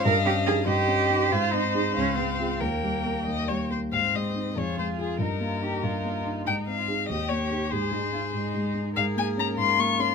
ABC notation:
X:1
M:6/8
L:1/16
Q:3/8=96
K:Ab
V:1 name="Violin"
e6 c6- | c12 | B6 e2 d2 c2 | f2 e4 d2 c2 A2 |
B8- B2 z2 | g2 f4 e2 d4 | c8- c2 z2 | f2 a2 b2 c'2 d'2 c'2 |]
V:2 name="Violin"
f6 e6 | c6 f6 | g8- g2 z2 | c6 A6 |
E12 | E3 F3 G6 | A12 | B12 |]
V:3 name="Cello"
B2 G2 A2 G6 | F2 E4 D2 C4 | B,8- B,2 z2 | C6 F6 |
E2 F2 G2 F6 | E6 G6 | A2 E2 F2 E6 | A6 F6 |]
V:4 name="Grand piano"
G,,2 D2 E2 G,,2 D2 E2 | A,,2 C2 [EA]2 D,,2 A,2 [FA]2 | E,,2 G,2 B,2 E,,2 G,2 B,2 | A,,2 A,2 [CE]2 F,,2 A,2 [CF]2 |
G,,2 B,2 E2 G,,2 B,2 E2 | A,,2 C2 [EA]2 E,,2 B,2 [EG]2 | A,,2 A,2 E2 A,,2 A,2 E2 | A,,2 B,2 D2 A,,2 B,2 D2 |]